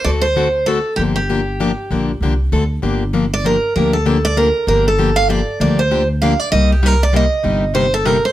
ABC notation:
X:1
M:3/4
L:1/8
Q:"Swing" 1/4=195
K:Gm
V:1 name="Steel-string acoustic guitar"
d c3 A2 | G G4- G- | G z4 z | z3 d B2 |
B A2 d B2 | B A2 f d2 | d c2 z f d | e G B d e2- |
e2 c A B c |]
V:2 name="Steel-string acoustic guitar"
[D,A,C^FA] z [D,A,CFA] z [D,A,CFA] z | [D,F,B,DG] z [D,F,B,DG] z [D,F,B,DG] z | [D,F,B,DG] z [D,F,B,DG] z [D,A,C^FA] z | [D,F,B,DG] z [D,F,B,DG] z [D,F,B,DG] z |
[D,F,B,DG] z [D,F,B,DG] z [D,F,B,DG] z | [D,F,B,DG] z [D,F,B,DG] z [D,F,B,DG] z | [D,F,B,DG] z [D,F,B,DG] z [D,F,B,DG] z | [C,G,B,EG] z [C,G,B,EG] z [C,G,B,EG] z |
[C,G,B,EG] z [C,G,B,EG] z [C,G,B,EG] z |]
V:3 name="Upright bass" clef=bass
D,,6 | G,,,6 | B,,,2 C,,2 D,,2 | G,,,6 |
D,,6 | G,,,6 | D,,6 | C,,6 |
G,,,6 |]